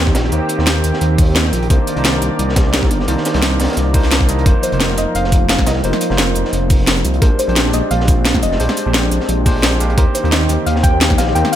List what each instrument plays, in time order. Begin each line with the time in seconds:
Already playing: detuned saw bass D#2, analog synth pad D#3 C4 G4, tine electric piano A#3 D#4 G4 C5
0.07 kick, snare
0.15 detuned saw bass A#1, snare, closed hi-hat
0.24 snare
0.32 detuned saw bass D#2, tine electric piano A#3 D#4 G4 C5, closed hi-hat
0.49 closed hi-hat
0.58 detuned saw bass D#2, tine electric piano A#3 D#4 G4 C5, snare
0.67 snare, closed hi-hat
0.84 detuned saw bass D#2, closed hi-hat
0.93 snare
1.01 detuned saw bass D#2, closed hi-hat
1.18 kick, closed hi-hat, open hi-hat
1.28 detuned saw bass D#2
1.35 snare, closed hi-hat
1.45 snare
1.53 detuned saw bass A#1, closed hi-hat
1.63 closed hi-hat
1.70 detuned saw bass C2, tine electric piano A#3 D4 D#4 C5, analog synth pad A#4 D5, kick, closed hi-hat
1.87 closed hi-hat
1.96 detuned saw bass C2, tine electric piano A#3 D4 D#4 C5, closed hi-hat
2.05 snare, closed hi-hat
2.14 snare
2.22 detuned saw bass C2, closed hi-hat
2.39 detuned saw bass C2, closed hi-hat
2.49 snare
2.56 kick, snare, closed hi-hat
2.65 detuned saw bass C2
2.73 snare, closed hi-hat
2.83 kick, snare
2.91 detuned saw bass G1, closed hi-hat
3.00 snare
3.08 detuned saw bass C2, tine electric piano A#3 D4 D#4 C5, closed hi-hat
3.18 snare
3.25 snare, closed hi-hat
3.33 detuned saw bass C2, tine electric piano A#3 D4 D#4 C5, snare, closed hi-hat
3.42 snare, closed hi-hat
3.60 detuned saw bass C2, snare, closed hi-hat
3.64 snare, closed hi-hat
3.68 snare, closed hi-hat
3.73 detuned saw bass C2, snare, closed hi-hat
3.77 closed hi-hat
3.94 tine electric piano A#3 D4 D#4 C5, kick, closed hi-hat, open hi-hat
4.03 detuned saw bass C2, snare
4.11 snare, closed hi-hat
4.21 kick, snare
4.28 detuned saw bass C2, tine electric piano A#3 D4 D#4 D#5, closed hi-hat
4.39 closed hi-hat
4.46 detuned saw bass F1, analog synth pad F3 D#4, tine electric piano A#3 D#4 F4 C5, synth pluck A#4, kick, closed hi-hat
4.63 synth pluck C5, closed hi-hat, shaker
4.72 detuned saw bass F1, tine electric piano A#3 D#4 F4 C5, closed hi-hat
4.80 snare, closed hi-hat
4.90 snare
4.98 detuned saw bass F1, synth pluck D#5, snare, closed hi-hat, shaker
5.15 detuned saw bass F1, synth pluck F5, closed hi-hat
5.24 snare
5.32 kick, closed hi-hat, shaker
5.41 detuned saw bass F1
5.49 synth pluck F5, snare, closed hi-hat
5.59 kick, snare, shaker
5.67 detuned saw bass C2, synth pluck D#5, snare, closed hi-hat, shaker
5.75 snare
5.84 detuned saw bass F1, tine electric piano A#3 D#4 F4 C5, synth pluck C5, closed hi-hat
5.93 snare
6.01 closed hi-hat, shaker
6.09 detuned saw bass F1, tine electric piano A#3 D#4 F4 C5, snare
6.18 snare, closed hi-hat
6.35 detuned saw bass F1, closed hi-hat, shaker
6.45 snare
6.53 detuned saw bass F1, closed hi-hat
6.70 kick, closed hi-hat, open hi-hat, shaker
6.79 detuned saw bass F1
6.87 snare, closed hi-hat
6.97 snare, shaker
7.05 detuned saw bass C2, closed hi-hat, shaker
7.14 closed hi-hat
7.21 detuned saw bass A#1, tine electric piano G#3 D4 G4 C5, analog synth pad C4 D4, synth pluck A#4, kick, closed hi-hat
7.39 synth pluck C5, closed hi-hat, shaker
7.47 detuned saw bass A#1, tine electric piano G#3 D4 G4 C5, closed hi-hat
7.56 snare, closed hi-hat
7.66 snare
7.73 detuned saw bass A#1, synth pluck D#5, snare, closed hi-hat, shaker
7.91 detuned saw bass A#1, synth pluck F5, closed hi-hat
8.00 snare
8.08 kick, closed hi-hat, shaker
8.17 detuned saw bass A#1
8.25 synth pluck F5, snare, closed hi-hat
8.34 kick, snare, shaker
8.42 detuned saw bass F1, synth pluck D#5, closed hi-hat, shaker
8.52 snare
8.59 detuned saw bass A#1, tine electric piano G#3 D4 G4 C5, synth pluck C5, closed hi-hat
8.69 snare
8.77 closed hi-hat, shaker
8.85 detuned saw bass A#1, tine electric piano G#3 D4 G4 C5
8.94 snare, closed hi-hat
9.11 detuned saw bass A#1, closed hi-hat, shaker
9.21 snare
9.29 detuned saw bass A#1, closed hi-hat
9.45 tine electric piano G#3 D4 G4 C5, kick, closed hi-hat, open hi-hat, shaker
9.55 detuned saw bass A#1
9.63 snare, closed hi-hat
9.72 snare, shaker
9.80 detuned saw bass A#1, tine electric piano G#3 D4 G4 F5, closed hi-hat, shaker
9.90 closed hi-hat
9.97 detuned saw bass D#2, analog synth pad D#3 C4 G4, tine electric piano A#3 D#4 G4 C5, synth pluck A#4, kick, closed hi-hat
10.15 synth pluck C5, closed hi-hat, shaker
10.23 detuned saw bass D#2, tine electric piano A#3 D#4 G4 C5, closed hi-hat
10.32 synth pluck D#5, snare, closed hi-hat
10.41 snare
10.49 detuned saw bass D#2, snare, closed hi-hat, shaker
10.66 detuned saw bass D#2, synth pluck F5, closed hi-hat
10.76 snare
10.83 synth pluck G5, kick, closed hi-hat, shaker
10.93 detuned saw bass D#2
11.01 snare, closed hi-hat
11.10 kick, snare, shaker
11.18 detuned saw bass A#1, synth pluck F5, snare, closed hi-hat, shaker
11.27 snare
11.35 detuned saw bass D#2, tine electric piano A#3 D#4 G4 C5, synth pluck G5, closed hi-hat
11.45 snare
11.52 synth pluck F5